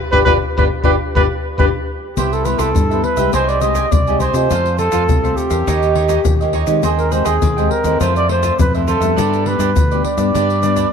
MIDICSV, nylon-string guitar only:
0, 0, Header, 1, 2, 480
1, 0, Start_track
1, 0, Tempo, 583658
1, 1786, Time_signature, 4, 2, 24, 8
1, 8986, End_track
2, 0, Start_track
2, 0, Title_t, "Nylon-string guitar"
2, 0, Program_c, 0, 24
2, 101, Note_on_c, 0, 62, 88
2, 104, Note_on_c, 0, 65, 93
2, 107, Note_on_c, 0, 67, 89
2, 182, Note_off_c, 0, 65, 0
2, 182, Note_off_c, 0, 67, 0
2, 183, Note_off_c, 0, 62, 0
2, 214, Note_on_c, 0, 62, 80
2, 214, Note_on_c, 0, 67, 89
2, 215, Note_on_c, 0, 65, 84
2, 296, Note_off_c, 0, 67, 0
2, 297, Note_off_c, 0, 65, 0
2, 298, Note_off_c, 0, 62, 0
2, 477, Note_on_c, 0, 62, 85
2, 481, Note_on_c, 0, 65, 83
2, 481, Note_on_c, 0, 67, 96
2, 551, Note_off_c, 0, 62, 0
2, 551, Note_off_c, 0, 67, 0
2, 553, Note_off_c, 0, 65, 0
2, 687, Note_on_c, 0, 62, 99
2, 693, Note_on_c, 0, 65, 102
2, 694, Note_on_c, 0, 67, 97
2, 773, Note_off_c, 0, 62, 0
2, 774, Note_off_c, 0, 67, 0
2, 775, Note_off_c, 0, 65, 0
2, 956, Note_on_c, 0, 65, 101
2, 960, Note_on_c, 0, 67, 100
2, 961, Note_on_c, 0, 62, 98
2, 1030, Note_off_c, 0, 65, 0
2, 1032, Note_off_c, 0, 62, 0
2, 1032, Note_off_c, 0, 67, 0
2, 1307, Note_on_c, 0, 62, 92
2, 1312, Note_on_c, 0, 65, 80
2, 1313, Note_on_c, 0, 67, 91
2, 1385, Note_off_c, 0, 62, 0
2, 1385, Note_off_c, 0, 65, 0
2, 1387, Note_off_c, 0, 67, 0
2, 1786, Note_on_c, 0, 48, 44
2, 1790, Note_on_c, 0, 55, 44
2, 1791, Note_on_c, 0, 59, 47
2, 1796, Note_on_c, 0, 64, 47
2, 1988, Note_off_c, 0, 55, 0
2, 1990, Note_off_c, 0, 59, 0
2, 1992, Note_off_c, 0, 64, 0
2, 2019, Note_on_c, 0, 55, 47
2, 2025, Note_on_c, 0, 59, 48
2, 2025, Note_on_c, 0, 64, 59
2, 2242, Note_off_c, 0, 48, 0
2, 2268, Note_on_c, 0, 43, 55
2, 2344, Note_off_c, 0, 55, 0
2, 2346, Note_off_c, 0, 59, 0
2, 2347, Note_off_c, 0, 64, 0
2, 2396, Note_on_c, 0, 55, 60
2, 2400, Note_on_c, 0, 59, 56
2, 2401, Note_on_c, 0, 64, 51
2, 2593, Note_off_c, 0, 55, 0
2, 2593, Note_off_c, 0, 59, 0
2, 2595, Note_off_c, 0, 64, 0
2, 2616, Note_on_c, 0, 56, 66
2, 2619, Note_on_c, 0, 63, 63
2, 2621, Note_on_c, 0, 67, 72
2, 2722, Note_off_c, 0, 43, 0
2, 2752, Note_on_c, 0, 48, 48
2, 2942, Note_off_c, 0, 56, 0
2, 2942, Note_off_c, 0, 63, 0
2, 2945, Note_off_c, 0, 67, 0
2, 2983, Note_on_c, 0, 56, 48
2, 2986, Note_on_c, 0, 63, 48
2, 2988, Note_on_c, 0, 67, 51
2, 3204, Note_off_c, 0, 48, 0
2, 3209, Note_off_c, 0, 56, 0
2, 3210, Note_off_c, 0, 63, 0
2, 3212, Note_off_c, 0, 67, 0
2, 3227, Note_on_c, 0, 48, 54
2, 3360, Note_on_c, 0, 56, 55
2, 3364, Note_on_c, 0, 63, 53
2, 3366, Note_on_c, 0, 67, 61
2, 3554, Note_off_c, 0, 56, 0
2, 3556, Note_off_c, 0, 63, 0
2, 3557, Note_off_c, 0, 67, 0
2, 3570, Note_on_c, 0, 57, 53
2, 3576, Note_on_c, 0, 60, 52
2, 3577, Note_on_c, 0, 65, 66
2, 3682, Note_off_c, 0, 48, 0
2, 3702, Note_on_c, 0, 53, 41
2, 3899, Note_off_c, 0, 57, 0
2, 3902, Note_off_c, 0, 60, 0
2, 3902, Note_off_c, 0, 65, 0
2, 4045, Note_on_c, 0, 57, 53
2, 4051, Note_on_c, 0, 60, 53
2, 4053, Note_on_c, 0, 65, 60
2, 4159, Note_off_c, 0, 53, 0
2, 4183, Note_on_c, 0, 48, 54
2, 4257, Note_off_c, 0, 57, 0
2, 4258, Note_off_c, 0, 60, 0
2, 4260, Note_off_c, 0, 65, 0
2, 4305, Note_on_c, 0, 57, 60
2, 4308, Note_on_c, 0, 60, 53
2, 4314, Note_on_c, 0, 65, 59
2, 4506, Note_off_c, 0, 57, 0
2, 4508, Note_off_c, 0, 60, 0
2, 4510, Note_off_c, 0, 65, 0
2, 4523, Note_on_c, 0, 58, 62
2, 4526, Note_on_c, 0, 61, 61
2, 4528, Note_on_c, 0, 67, 69
2, 4639, Note_off_c, 0, 48, 0
2, 4668, Note_on_c, 0, 51, 55
2, 4975, Note_off_c, 0, 58, 0
2, 4977, Note_off_c, 0, 61, 0
2, 4978, Note_off_c, 0, 67, 0
2, 5005, Note_on_c, 0, 58, 63
2, 5009, Note_on_c, 0, 61, 63
2, 5013, Note_on_c, 0, 67, 66
2, 5122, Note_off_c, 0, 51, 0
2, 5153, Note_on_c, 0, 46, 52
2, 5216, Note_off_c, 0, 58, 0
2, 5218, Note_off_c, 0, 61, 0
2, 5221, Note_off_c, 0, 67, 0
2, 5282, Note_on_c, 0, 58, 63
2, 5285, Note_on_c, 0, 61, 56
2, 5289, Note_on_c, 0, 67, 68
2, 5475, Note_off_c, 0, 58, 0
2, 5476, Note_off_c, 0, 61, 0
2, 5478, Note_off_c, 0, 67, 0
2, 5493, Note_on_c, 0, 56, 57
2, 5494, Note_on_c, 0, 60, 53
2, 5501, Note_on_c, 0, 67, 59
2, 5605, Note_off_c, 0, 46, 0
2, 5634, Note_on_c, 0, 51, 42
2, 5852, Note_off_c, 0, 56, 0
2, 5852, Note_off_c, 0, 60, 0
2, 5858, Note_off_c, 0, 67, 0
2, 5862, Note_on_c, 0, 56, 55
2, 5862, Note_on_c, 0, 60, 51
2, 5868, Note_on_c, 0, 67, 58
2, 6086, Note_off_c, 0, 51, 0
2, 6106, Note_on_c, 0, 51, 54
2, 6185, Note_off_c, 0, 56, 0
2, 6185, Note_off_c, 0, 60, 0
2, 6188, Note_off_c, 0, 67, 0
2, 6234, Note_on_c, 0, 56, 58
2, 6237, Note_on_c, 0, 60, 54
2, 6243, Note_on_c, 0, 67, 68
2, 6431, Note_off_c, 0, 56, 0
2, 6433, Note_off_c, 0, 60, 0
2, 6434, Note_off_c, 0, 67, 0
2, 6448, Note_off_c, 0, 51, 0
2, 6451, Note_on_c, 0, 52, 72
2, 6454, Note_on_c, 0, 57, 68
2, 6458, Note_on_c, 0, 60, 62
2, 6588, Note_on_c, 0, 41, 55
2, 6780, Note_off_c, 0, 52, 0
2, 6782, Note_off_c, 0, 57, 0
2, 6783, Note_off_c, 0, 60, 0
2, 6818, Note_on_c, 0, 52, 43
2, 6822, Note_on_c, 0, 57, 52
2, 6828, Note_on_c, 0, 60, 55
2, 7043, Note_off_c, 0, 41, 0
2, 7047, Note_off_c, 0, 52, 0
2, 7050, Note_off_c, 0, 57, 0
2, 7051, Note_off_c, 0, 60, 0
2, 7069, Note_on_c, 0, 48, 53
2, 7192, Note_on_c, 0, 52, 66
2, 7198, Note_on_c, 0, 57, 59
2, 7200, Note_on_c, 0, 60, 68
2, 7391, Note_off_c, 0, 52, 0
2, 7393, Note_off_c, 0, 57, 0
2, 7395, Note_off_c, 0, 60, 0
2, 7417, Note_on_c, 0, 55, 49
2, 7422, Note_on_c, 0, 59, 55
2, 7422, Note_on_c, 0, 62, 56
2, 7524, Note_off_c, 0, 48, 0
2, 7550, Note_on_c, 0, 43, 46
2, 7744, Note_off_c, 0, 55, 0
2, 7745, Note_off_c, 0, 59, 0
2, 7746, Note_off_c, 0, 62, 0
2, 7782, Note_on_c, 0, 55, 47
2, 7786, Note_on_c, 0, 59, 46
2, 7789, Note_on_c, 0, 62, 51
2, 8005, Note_off_c, 0, 43, 0
2, 8010, Note_off_c, 0, 55, 0
2, 8011, Note_off_c, 0, 59, 0
2, 8013, Note_off_c, 0, 62, 0
2, 8030, Note_on_c, 0, 50, 51
2, 8152, Note_on_c, 0, 55, 59
2, 8155, Note_on_c, 0, 59, 60
2, 8161, Note_on_c, 0, 62, 59
2, 8351, Note_off_c, 0, 55, 0
2, 8353, Note_off_c, 0, 59, 0
2, 8355, Note_off_c, 0, 62, 0
2, 8373, Note_on_c, 0, 55, 63
2, 8377, Note_on_c, 0, 59, 64
2, 8377, Note_on_c, 0, 62, 73
2, 8485, Note_off_c, 0, 50, 0
2, 8505, Note_on_c, 0, 43, 48
2, 8702, Note_off_c, 0, 55, 0
2, 8704, Note_off_c, 0, 59, 0
2, 8704, Note_off_c, 0, 62, 0
2, 8743, Note_on_c, 0, 55, 55
2, 8747, Note_on_c, 0, 59, 41
2, 8750, Note_on_c, 0, 62, 49
2, 8963, Note_off_c, 0, 43, 0
2, 8986, Note_off_c, 0, 55, 0
2, 8986, Note_off_c, 0, 59, 0
2, 8986, Note_off_c, 0, 62, 0
2, 8986, End_track
0, 0, End_of_file